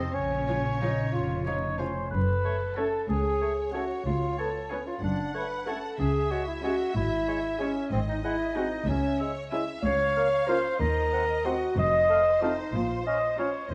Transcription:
Already playing: cello section C3, bassoon C4, clarinet C4, violin section C5, flute C5, oboe D#5
0.13 double bass section A#1, cello section C#3, clarinet C#4, bassoon C#4, violin section C#5, flute C#5, oboe C#5
0.46 french horn section F3 C#4, viola section F3 F4, violin section C#5 F5
0.79 french horn section F3 C#4 D#4, viola section F3 F4, clarinet D#4, violin section C#5 F5, flute D#5
1.12 double bass section F1, french horn section F4, clarinet F4, bassoon F4, flute F5
1.44 french horn section F3 C#4 C#5, viola section F3 F4, bassoon D#4, clarinet C#5, violin section C#5 F5, flute C#6
1.78 french horn section F3 C#4 C5, viola section F3 F4, bassoon C#4, clarinet C5, violin section C#5 F5, flute C6
2.11 double bass section F#1, cello section F#2, violin section A4, clarinet B4, french horn section B4, flute B5
2.45 bassoon A3, oboe C#5
2.76 bassoon A3, viola section C#4 A4, clarinet A4, french horn section A4, oboe C#5, violin section F#5, flute A5
3.09 double bass section C#2, cello section C#2, clarinet G#4, french horn section G#4, violin section C#5, flute G#5
3.41 bassoon A3, oboe C#5
3.73 bassoon A3, viola section C#4 A4, clarinet F#4, french horn section F#4, oboe C#5, flute F#5, violin section F#5
4.05 cello section C#2, double bass section C#2, clarinet F4, french horn section F4, flute F5
4.38 bassoon B3, clarinet A4, french horn section A4, oboe C#5, flute A5
4.69 bassoon B3, clarinet C#4, viola section C#4 B4, french horn section C#4, oboe C#5, flute C#5, violin section G#5
4.87 clarinet F4, french horn section F4, flute F5
5.02 double bass section F#1, cello section F#2, french horn section D4, clarinet D4, flute D5, violin section F#5
5.34 bassoon A3, french horn section B4, clarinet B4, oboe C#5, flute B5
5.66 bassoon A3, viola section C#4 A4, french horn section A4, clarinet A4, oboe C#5, violin section F#5, flute A5
5.98 double bass section C#2, cello section C#3, french horn section G#4, clarinet G#4, violin section E5, flute G#5
6.31 bassoon G#3, clarinet F#4, french horn section F#4, oboe C#5, flute F#5
6.47 french horn section E4, clarinet E4, flute E5
6.63 bassoon G#3, viola section C#4 G#4, clarinet F#4, french horn section F#4, oboe C#5, flute F#5, violin section G#5
6.95 double bass section G#1, cello section G#2, french horn section E4, clarinet E4, flute E5
7.28 bassoon G#3, oboe C#5
7.59 bassoon G#3, clarinet C#4, french horn section C#4, viola section C#4 G#4, flute C#5, oboe C#5, violin section G#5
7.90 double bass section G#1, cello section G#2, french horn section C4, clarinet C4, flute C5, violin section D#5
8.08 french horn section D#4, clarinet D#4, flute D#5
8.23 bassoon G#3, clarinet E4, french horn section E4, flute E5, oboe F#5
8.55 bassoon G#3, viola section C4 F#4, french horn section D#4, clarinet D#4, flute D#5, oboe F#5, violin section G#5
8.87 cello section C#2, double bass section C#2, french horn section C#4, clarinet C#4, flute C#5, violin section E5
9.19 bassoon G#3, violin section C#5, oboe E5
9.51 bassoon G#3, viola section C#4 E4, violin section E5 G#5, oboe E5
9.83 cello section C#2, double bass section C#2, french horn section C#5, clarinet C#5, violin section F5, flute C#6
10.16 bassoon A#3, oboe F5
10.47 bassoon A#3, viola section C#4 F4, french horn section C5, clarinet C5, oboe F5, violin section A#5, flute C6
10.79 cello section D#2, double bass section D#2, french horn section A#4, clarinet A#4, violin section D#5, flute A#5
11.13 bassoon C4, oboe F#5
11.45 bassoon C4, viola section C4 F#4, clarinet F#4, french horn section F#4, flute F#5, oboe F#5, violin section C6
11.77 double bass section F1, cello section F2, violin section C5, french horn section D#5, clarinet D#5, flute D#6
12.10 bassoon A3, oboe F5
12.42 bassoon A3, viola section C4 F4, clarinet D#4, french horn section D#4, flute D#5, oboe F5, violin section A5
12.74 double bass section A#1, cello section A#2, french horn section F4, clarinet F4, flute F5
13.06 bassoon C#4, clarinet D#5, french horn section D#5, oboe F5, flute D#6
13.38 bassoon C#4, viola section C#4 F4, french horn section C#5, clarinet C#5, oboe F5, violin section A#5, flute C#6
13.69 double bass section D#2, cello section D#2, french horn section C5, clarinet C5, violin section D#5, flute C6

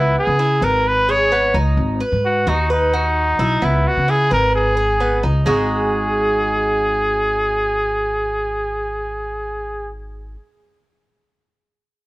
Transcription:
Already playing: upright bass C#2, cuban tres B3, trumpet E4
0.19 trumpet G#4
0.27 upright bass C#3
0.39 cuban tres E4
0.61 upright bass G#1, trumpet A#4, cuban tres B4
0.88 trumpet B4
1.09 cuban tres G#4, trumpet C#5
1.32 cuban tres B3
1.54 upright bass C#2, cuban tres D#4
1.77 upright bass G#1
2.00 cuban tres B4
2.12 upright bass G#2
2.25 trumpet F#4
2.47 upright bass D#2, trumpet D#4, cuban tres F#4
2.70 trumpet D#4, cuban tres B4
2.93 cuban tres F#4
3.39 upright bass B1, cuban tres E4
3.62 upright bass C#2, cuban tres B3, trumpet E4
3.87 trumpet F#4
3.97 upright bass C#3
4.08 cuban tres E4, trumpet G#4
4.31 upright bass G#1, trumpet A#4, cuban tres B4
4.55 trumpet G#4
4.77 cuban tres G#4
5.00 cuban tres B3
5.23 upright bass C#2, cuban tres D#4
5.46 upright bass G#1, cuban tres G#3 D#4 F#4, trumpet G#4

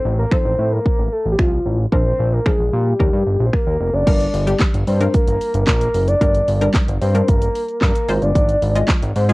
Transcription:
Already playing: soft synth lead C5
0.05 analog synth bass A1
0.19 soft synth lead A#4
0.32 synth pluck F3 D#4 A4, soft synth lead C5, finger snap, kick
0.45 analog synth bass A1
0.59 analog synth bass A2
0.72 soft synth lead A#4
0.86 kick
0.99 analog synth bass A1
1.12 soft synth lead A4
1.26 analog synth bass A1
1.32 soft synth lead G4
1.39 analog synth bass C2, soft synth lead F4, finger snap, kick
1.66 analog synth bass A1
1.92 analog synth bass A#1, synth pluck F3 D4 A#4, soft synth lead C5, kick
2.19 analog synth bass A#1
2.33 soft synth lead A#4
2.46 synth pluck F3 D4 A#4, soft synth lead G#4, finger snap, kick
2.60 analog synth bass A#1
2.73 analog synth bass A#2, soft synth lead G4
2.99 analog synth bass D#2, synth pluck G3 D#4 A#4, kick
3.13 analog synth bass G2
3.26 analog synth bass G1
3.40 analog synth bass A#1
3.46 soft synth lead C5
3.53 soft synth lead A#4, finger snap, kick
3.67 analog synth bass D#2
3.80 analog synth bass F1
3.94 analog synth bass F#1, soft synth lead D5
4.07 analog synth bass G1, synth pluck G3 D4 A#4, kick, closed hi-hat, crash, shaker
4.20 closed hi-hat, shaker
4.34 analog synth bass G1, open hi-hat, shaker
4.47 synth pluck G3 D4 G4, closed hi-hat, shaker
4.59 kick, snare, clap, closed hi-hat, shaker
4.74 analog synth bass G1, closed hi-hat, shaker
4.87 analog synth bass G2, soft synth lead C5, open hi-hat, shaker
5.00 synth pluck G3 D4 A#4, closed hi-hat, shaker
5.14 soft synth lead A#4, kick, closed hi-hat, shaker
5.27 analog synth bass G1, closed hi-hat, shaker
5.41 open hi-hat, shaker
5.54 analog synth bass G1, closed hi-hat, shaker
5.67 analog synth bass A#1, soft synth lead A#4, kick, snare, clap, closed hi-hat, shaker
5.81 closed hi-hat, shaker
5.94 analog synth bass F#1, open hi-hat, shaker
6.08 soft synth lead D5, closed hi-hat, shaker
6.21 analog synth bass G1, synth pluck G3 D4 A#4, kick, closed hi-hat, shaker
6.35 closed hi-hat, shaker
6.48 analog synth bass G1, open hi-hat, shaker
6.61 synth pluck G3 D4 A#4, closed hi-hat, shaker
6.74 kick, snare, clap, closed hi-hat, shaker
6.88 analog synth bass G1, closed hi-hat, shaker
7.02 analog synth bass G2, soft synth lead C5, open hi-hat, shaker
7.15 synth pluck G3 D4 A#4, closed hi-hat, shaker
7.28 analog synth bass G1, soft synth lead A#4, kick, closed hi-hat, shaker
7.42 closed hi-hat, shaker
7.55 open hi-hat, shaker
7.68 closed hi-hat, shaker
7.81 analog synth bass G2, soft synth lead A#4, kick, snare, clap, closed hi-hat, shaker
7.95 closed hi-hat, shaker
8.08 analog synth bass G#1, synth pluck G#3 F4 C5, open hi-hat, shaker
8.22 analog synth bass G1, soft synth lead D5, closed hi-hat, shaker
8.35 analog synth bass G#1, kick, closed hi-hat, shaker
8.49 closed hi-hat, shaker
8.62 analog synth bass G#1, open hi-hat, shaker
8.75 synth pluck G#3 F4 D#5, closed hi-hat, shaker
8.88 kick, snare, clap, closed hi-hat, shaker
9.02 analog synth bass G#1, closed hi-hat, shaker
9.16 analog synth bass G#2, soft synth lead C5, open hi-hat, shaker
9.29 synth pluck G#3 F4 G#4, closed hi-hat, shaker

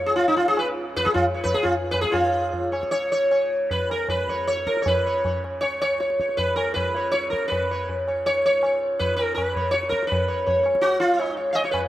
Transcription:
Already playing: tanpura C#2 G#2 C#3, sitar C#5
0.06 sitar G#4
0.16 sitar F4, tabla tin
0.28 sitar D#4
0.37 tanpura C#3, sitar F4, tabla na
0.48 sitar G#4
0.57 sitar B4, tabla na
0.93 tanpura C#3, sitar B4, tabla tin, tabla ge
1.05 sitar G#4, tabla ke
1.14 sitar F4, tabla na, tabla ge
1.34 sitar C#5
1.44 sitar B4, tabla tin, tabla ge
1.49 tanpura C#2
1.54 sitar G#4, tabla ke
1.63 sitar F4, tabla na, tabla ge
1.91 sitar B4, tabla tin, tabla ge
2.01 tanpura G#2, sitar G#4, tabla ke
2.11 sitar F4 C#5, tabla tin, tabla ge
2.15 tanpura G#2
2.53 tabla tin, tabla ge
2.69 tanpura C#3, sitar C#5
2.73 tabla na
2.83 tabla ke
2.91 sitar C#5, tabla tin
3.12 sitar C#5
3.22 tanpura C#3
3.31 sitar C#5, tabla na
3.71 sitar B4, tabla tin, tabla ge
3.77 tanpura C#2
3.90 sitar A#4, tabla na
4.09 sitar B4, tabla na, tabla ge
4.28 tanpura G#2, sitar C#5, tabla ge
4.47 sitar C#5, tabla te
4.57 tabla te
4.67 sitar A#4, tabla ke
4.77 tabla te
4.82 tanpura C#3, sitar C#5
4.86 sitar B4, tabla tin, tabla ge
5.06 sitar C#5
5.25 sitar C#5, tabla tin, tabla ge
5.35 tanpura C#3
5.44 tabla na
5.61 sitar C#5, tabla tin
5.82 sitar C#5, tabla na
5.88 tanpura C#2
6.00 sitar C#5, tabla te
6.10 tabla te
6.20 sitar C#5, tabla ke
6.29 tabla te
6.37 sitar B4, tabla tin, tabla ge
6.41 tanpura G#2
6.56 sitar A#4, tabla na
6.74 sitar B4, tabla na, tabla ge
6.92 tanpura C#3, sitar C#5, tabla te
7.12 sitar C#5, tabla te
7.24 tabla te
7.30 sitar A#4, tabla ke
7.42 tanpura C#3, tabla te
7.48 sitar B4
7.52 tabla tin, tabla ge
7.71 sitar C#5
7.89 tabla tin, tabla ge
7.97 tanpura C#2
8.08 sitar C#5, tabla na
8.26 sitar C#5, tabla tin
8.46 sitar C#5
8.51 tanpura G#2
8.63 sitar C#5, tabla na
8.99 tanpura C#3, sitar B4, tabla tin, tabla ge
9.16 sitar A#4, tabla na
9.35 sitar B4, tabla na, tabla ge
9.52 tanpura C#3, tabla ge
9.57 sitar C#5
9.71 sitar C#5, tabla te
9.83 tabla te
9.89 sitar A#4, tabla ke
10.03 tanpura C#2, tabla te
10.07 sitar B4
10.12 tabla tin, tabla ge
10.28 sitar C#5
10.46 sitar C#5, tabla tin, tabla ge
10.53 tanpura G#2
10.63 sitar C#5, tabla na
10.75 tabla ke
10.81 sitar F#4, tabla tin
11.00 tanpura C#3, sitar F4
11.18 sitar C#5, tabla na
11.23 sitar D#4
11.37 sitar C#5
11.53 tanpura C#3, sitar D#5 F5, tabla na
11.64 sitar C#5, tabla te
11.71 sitar B4, tabla na, tabla ge

